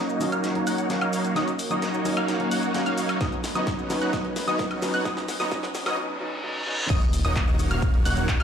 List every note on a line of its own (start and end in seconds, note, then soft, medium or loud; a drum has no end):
0.00 0.18 F#3 medium
0.00 5.94 F#3 medium
0.00 0.18 A#3 medium
0.00 0.30 A#3 medium
0.00 3.17 A#3 medium
0.00 0.18 C#4 medium
0.00 3.17 C#4 medium
0.00 0.18 D#4 medium
0.00 0.30 D#4 medium
0.00 1.34 D#4 medium
0.00 0.30 F#4 medium
0.00 3.17 A#4 medium
0.00 0.30 C#5 medium
0.00 0.30 D#5 medium
0.00 0.30 D#6 medium
0.00 riser medium
0.09 shaker soft
0.20 0.52 F#3 medium
0.20 0.52 A#3 medium
0.20 0.53 C#4 medium
0.20 0.53 D#4 loud
0.20 open hi-hat loud
0.20 shaker medium
0.32 0.64 A#3 medium
0.32 0.64 D#4 medium
0.32 0.64 F#4 medium
0.32 0.64 C#5 medium
0.32 0.64 F5 medium
0.32 0.64 F6 medium
0.32 closed hi-hat medium
0.32 shaker soft
0.44 snare medium
0.44 closed hi-hat medium
0.44 shaker soft
0.55 0.87 F#3 medium
0.55 0.87 A#3 medium
0.55 0.87 C#4 medium
0.55 0.88 D#4 medium
0.55 closed hi-hat soft
0.67 0.99 A#3 medium
0.67 0.99 D#4 medium
0.67 0.99 F#4 medium
0.67 0.99 C#5 medium
0.67 0.99 F#5 loud
0.67 0.99 F#6 medium
0.67 open hi-hat loud
0.67 shaker medium
0.78 closed hi-hat medium
0.78 shaker soft
0.89 1.33 F#3 medium
0.89 1.33 A#3 medium
0.89 1.33 C#4 medium
0.89 1.34 F5 medium
0.89 snare medium
0.89 closed hi-hat medium
0.89 shaker soft
1.01 1.33 A#3 medium
1.01 1.33 D#4 medium
1.01 1.33 F#4 medium
1.01 1.33 C#5 medium
1.01 1.33 F5 medium
1.01 1.33 F6 medium
1.01 closed hi-hat soft
1.01 high woodblock medium
1.01 shaker soft
1.13 open hi-hat loud
1.13 shaker medium
1.25 closed hi-hat medium
1.25 shaker soft
1.36 1.52 F#3 medium
1.36 1.53 A#3 medium
1.36 1.50 A#3 medium
1.36 1.53 C#4 medium
1.36 1.50 D#4 medium
1.36 1.53 D#4 medium
1.36 1.50 F#4 medium
1.36 1.50 C#5 medium
1.36 1.50 D#5 medium
1.36 1.50 D#6 medium
1.36 snare medium
1.36 closed hi-hat medium
1.36 shaker soft
1.48 closed hi-hat soft
1.48 shaker soft
1.59 open hi-hat loud
1.59 shaker medium
1.70 2.02 F#3 medium
1.70 2.02 A#3 medium
1.70 2.14 A#3 medium
1.70 2.03 C#4 medium
1.70 2.14 D#4 medium
1.70 2.03 D#4 medium
1.70 2.14 F#4 medium
1.70 2.14 C#5 medium
1.70 2.14 D#5 medium
1.70 2.14 D#6 medium
1.70 shaker soft
1.82 snare medium
1.82 closed hi-hat medium
1.82 shaker soft
1.94 shaker soft
2.05 2.37 F#3 medium
2.05 2.37 A#3 medium
2.05 2.37 C#4 medium
2.05 2.38 D#4 loud
2.05 open hi-hat loud
2.05 shaker medium
2.17 2.49 A#3 medium
2.17 2.49 D#4 medium
2.17 2.49 F#4 medium
2.17 2.49 C#5 medium
2.17 2.49 F5 loud
2.17 2.49 F6 loud
2.17 closed hi-hat soft
2.17 high woodblock medium
2.17 shaker soft
2.28 snare medium
2.28 closed hi-hat medium
2.28 shaker soft
2.39 2.72 F#3 medium
2.39 2.72 A#3 medium
2.39 2.72 C#4 medium
2.39 2.72 D#4 medium
2.39 closed hi-hat soft
2.51 2.83 A#3 medium
2.51 2.83 D#4 medium
2.51 2.83 F#4 medium
2.51 2.83 C#5 medium
2.51 2.83 F#5 medium
2.51 2.83 F#6 medium
2.51 open hi-hat loud
2.51 shaker medium
2.63 closed hi-hat medium
2.63 shaker soft
2.74 3.18 F#3 medium
2.74 3.18 A#3 medium
2.74 3.18 C#4 medium
2.74 3.18 F5 medium
2.74 snare medium
2.74 closed hi-hat medium
2.74 shaker soft
2.86 3.18 A#3 medium
2.86 3.18 D#4 medium
2.86 3.18 F#4 medium
2.86 3.18 C#5 medium
2.86 3.18 F5 medium
2.86 3.18 F6 loud
2.86 closed hi-hat soft
2.86 shaker soft
2.98 open hi-hat loud
2.98 shaker medium
3.09 closed hi-hat medium
3.09 high woodblock medium
3.09 shaker soft
3.20 3.37 F#3 medium
3.20 3.37 B3 medium
3.20 5.95 B3 medium
3.20 3.34 B3 medium
3.20 5.95 C#4 medium
3.20 3.37 C#4 medium
3.20 5.95 D#4 medium
3.20 3.34 D#4 medium
3.20 3.38 D#4 medium
3.20 3.34 F#4 medium
3.20 5.95 B4 medium
3.20 3.34 C#5 medium
3.20 3.34 D#5 medium
3.20 3.34 D#6 medium
3.20 kick loud
3.20 snare medium
3.20 closed hi-hat medium
3.20 shaker soft
3.32 closed hi-hat soft
3.32 shaker soft
3.44 snare medium
3.44 open hi-hat loud
3.44 shaker medium
3.55 3.87 F#3 medium
3.55 3.87 B3 medium
3.55 3.99 B3 medium
3.55 3.87 C#4 medium
3.55 3.99 D#4 medium
3.55 3.88 D#4 medium
3.55 3.99 F#4 medium
3.55 3.99 C#5 medium
3.55 3.99 D#5 medium
3.55 3.99 D#6 medium
3.55 closed hi-hat medium
3.55 shaker soft
3.67 kick loud
3.67 snare medium
3.67 closed hi-hat medium
3.67 shaker soft
3.79 shaker soft
3.89 4.11 F#3 medium
3.89 4.11 B3 medium
3.89 4.11 C#4 medium
3.89 4.12 D#4 loud
3.89 snare medium
3.89 open hi-hat loud
3.89 shaker medium
4.02 4.11 B3 medium
4.02 4.11 D#4 medium
4.02 4.11 F#4 medium
4.02 4.11 C#5 medium
4.02 4.11 F#5 medium
4.02 4.11 F#6 medium
4.02 closed hi-hat medium
4.02 shaker soft
4.13 4.29 F#3 medium
4.13 4.30 B3 medium
4.13 4.27 B3 medium
4.13 4.30 C#4 medium
4.13 4.27 D#4 medium
4.13 4.30 D#4 medium
4.13 4.27 F#4 medium
4.13 4.27 C#5 medium
4.13 4.27 D#5 medium
4.13 4.27 D#6 medium
4.13 kick loud
4.13 snare medium
4.13 closed hi-hat medium
4.13 shaker soft
4.25 closed hi-hat soft
4.36 snare medium
4.36 open hi-hat loud
4.36 shaker medium
4.47 4.79 F#3 medium
4.47 4.79 B3 medium
4.47 4.91 B3 medium
4.47 4.80 C#4 medium
4.47 4.91 D#4 medium
4.47 4.80 D#4 medium
4.47 4.91 F#4 medium
4.47 4.91 C#5 medium
4.47 4.91 D#5 medium
4.47 4.91 D#6 medium
4.47 closed hi-hat medium
4.47 shaker soft
4.59 kick loud
4.59 snare medium
4.59 closed hi-hat medium
4.59 shaker soft
4.71 closed hi-hat soft
4.71 high woodblock medium
4.71 shaker soft
4.82 5.03 F#3 loud
4.82 5.03 B3 medium
4.82 5.04 C#4 medium
4.82 5.04 D#4 loud
4.82 snare medium
4.82 open hi-hat loud
4.82 shaker medium
4.94 5.04 B3 medium
4.94 5.04 D#4 medium
4.94 5.04 F#4 medium
4.94 5.04 C#5 medium
4.94 5.04 F#5 medium
4.94 5.04 F#6 medium
4.94 closed hi-hat medium
4.94 shaker soft
5.05 5.22 F#3 medium
5.05 5.22 B3 medium
5.05 5.19 B3 medium
5.05 5.22 C#4 medium
5.05 5.19 D#4 medium
5.05 5.22 D#4 medium
5.05 5.19 F#4 medium
5.05 5.19 C#5 medium
5.05 5.19 D#5 medium
5.05 5.19 D#6 medium
5.05 kick loud
5.05 snare medium
5.05 closed hi-hat medium
5.05 shaker soft
5.17 snare medium
5.17 closed hi-hat soft
5.17 shaker soft
5.28 snare medium
5.28 open hi-hat loud
5.28 shaker medium
5.39 5.49 F#3 medium
5.39 5.50 B3 medium
5.39 5.50 C#4 medium
5.39 5.50 D#4 medium
5.39 5.50 F#4 medium
5.39 5.50 C#5 medium
5.39 5.50 D#5 medium
5.39 5.50 D#6 medium
5.39 snare medium
5.39 shaker soft
5.51 5.68 F#3 medium
5.51 5.68 B3 medium
5.51 5.65 B3 medium
5.51 5.68 C#4 medium
5.51 5.65 D#4 medium
5.51 5.68 D#4 medium
5.51 5.65 F#4 medium
5.51 5.65 C#5 medium
5.51 5.65 D#5 medium
5.51 5.65 D#6 medium
5.51 kick loud
5.51 snare loud
5.51 closed hi-hat medium
5.51 shaker soft
5.63 snare medium
5.63 closed hi-hat soft
5.63 shaker soft
5.75 snare loud
5.75 open hi-hat loud
5.75 shaker medium
5.86 5.96 F#3 medium
5.86 5.96 B3 medium
5.86 5.96 C#4 medium
5.86 5.96 D#4 medium
5.86 5.96 F#4 medium
5.86 5.96 C#5 medium
5.86 5.96 D#5 medium
5.86 5.96 D#6 medium
5.86 snare medium
5.86 closed hi-hat soft
5.86 high woodblock medium
5.86 shaker soft
5.97 6.14 F#3 medium
5.97 6.14 B3 medium
5.97 6.14 C#4 medium
5.97 6.14 D#4 medium
5.97 reverse cymbal medium
6.20 6.37 F#3 medium
6.20 6.37 B3 medium
6.20 6.37 C#4 medium
6.20 6.38 D#4 medium
6.43 6.60 F#3 medium
6.43 6.60 B3 medium
6.43 6.60 C#4 medium
6.43 6.61 D#4 medium
6.66 6.83 F#3 medium
6.66 6.83 B3 medium
6.66 6.83 C#4 medium
6.66 6.84 D#4 loud
6.90 7.22 D#1 medium
6.90 8.43 C#3 medium
6.90 8.43 F#3 medium
6.90 8.43 A#3 medium
6.90 7.04 A#3 medium
6.90 7.04 D#4 medium
6.90 8.43 D#4 medium
6.90 7.04 F#4 medium
6.90 8.43 F#4 medium
6.90 7.04 C#5 medium
6.90 7.04 D#5 medium
6.90 7.04 D#6 loud
6.90 kick loud
6.90 closed hi-hat medium
6.90 crash loud
6.90 impact medium
6.90 shaker soft
7.02 closed hi-hat soft
7.02 shaker soft
7.13 open hi-hat loud
7.13 shaker medium
7.25 7.68 D#1 loud
7.25 7.68 A#3 medium
7.25 7.68 D#4 medium
7.25 7.68 F#4 medium
7.25 7.68 C#5 medium
7.25 7.68 D#5 medium
7.25 7.68 D#6 medium
7.25 closed hi-hat medium
7.25 shaker soft
7.36 kick loud
7.36 clap loud
7.36 closed hi-hat medium
7.36 shaker soft
7.48 shaker soft
7.59 open hi-hat loud
7.59 shaker medium
7.71 8.03 D#1 loud
7.71 8.03 A#3 medium
7.71 8.03 D#4 medium
7.71 8.03 F#4 medium
7.71 8.03 C#5 medium
7.71 8.03 F5 medium
7.71 8.03 F6 loud
7.71 closed hi-hat medium
7.71 shaker soft
7.82 kick loud
7.82 closed hi-hat medium
7.82 shaker soft
7.94 closed hi-hat soft
8.05 8.38 D#1 loud
8.05 8.37 A#3 medium
8.05 8.37 D#4 medium
8.05 8.37 F#4 medium
8.05 8.37 C#5 medium
8.05 8.37 F#5 medium
8.05 8.37 F#6 medium
8.05 open hi-hat loud
8.05 shaker medium
8.17 closed hi-hat medium
8.17 shaker soft
8.28 kick loud
8.28 clap loud
8.28 closed hi-hat medium
8.28 shaker soft
8.40 8.43 D#1 medium
8.40 8.43 A#3 medium
8.40 8.43 D#4 medium
8.40 8.43 F#4 medium
8.40 8.43 C#5 medium
8.40 8.43 F5 medium
8.40 8.43 F6 loud
8.40 closed hi-hat soft
8.40 high woodblock medium
8.40 shaker soft